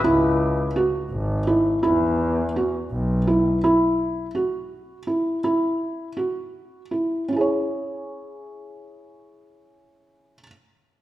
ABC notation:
X:1
M:5/8
L:1/8
Q:1/4=82
K:C#m
V:1 name="Felt piano"
E2 F2 E | E2 F2 E | E2 F2 E | E2 F2 E |
[CEGc]4- [CEGc]- | [CEGc]4- [CEGc] |]
V:2 name="Double bass" clef=bass
C,,3 G,,,2 | E,,3 B,,,2 | z4 z | z4 z |
z4 z | z4 z |]